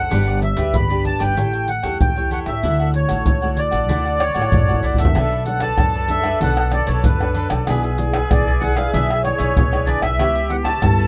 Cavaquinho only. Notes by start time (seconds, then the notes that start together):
Already playing: A4
0.10 D4 G4 B4 D5
0.27 G4 B4 D5
0.42 muted cavaquinho stroke
0.56 G4 B4 D5
0.90 G4 B4 D5
1.19 G4 B4 D5
1.36 E4 A4 C#5 G5
1.53 A4 C#5 G5
1.68 muted cavaquinho stroke
1.83 A4 C#5 G5
2.16 A4 C#5 G5
2.31 E4 A4 C#5 G5
2.46 A4 C#5 G5
2.63 E4 A4 D5 F#5
2.80 A4 D5 F#5
2.94 muted cavaquinho stroke
3.08 A4 F#5
3.42 A4 D5 F#5
3.71 A4 D5 F#5
3.88 E4 A4 D5 F#5
4.05 A4 D5 F#5
4.20 muted cavaquinho stroke
4.34 A4 F#5
4.68 A4 D5 F#5
4.83 E4 A4 D5 F#5
4.98 A4 D5 F#5
5.15 D4 A4 B4 D5
5.31 A4 B4 D5
5.46 muted cavaquinho stroke
5.60 A4 B4 D5
5.94 A4 B4 D5
6.24 A4 B4 D5
6.41 D4 A4 B4 D5
6.57 A4 B4 D5
6.72 muted cavaquinho stroke
6.87 A4 B4 D5
7.21 A4 B4 D5
7.35 D4 A4 B4 D5
7.50 A4 B4 D5
7.68 D4 G#4 B4 E5
7.83 G#4 B4 E5
7.99 muted cavaquinho stroke
8.13 G#4 B4 E5
8.46 G#4 B4 E5
8.76 G#4 B4 E5
8.93 D4 G#4 B4 E5
9.09 G#4 B4 E5
9.24 muted cavaquinho stroke
9.38 G#4 B4 E5
9.72 G#4 B4 E5
9.86 D4 G#4 B4 E5
10.02 G#4 B4 E5
10.19 G4 B4 C#5 E5
10.35 B4 C#5 E5
10.49 muted cavaquinho stroke
10.64 B4 C#5 E5
10.98 B4 C#5 E5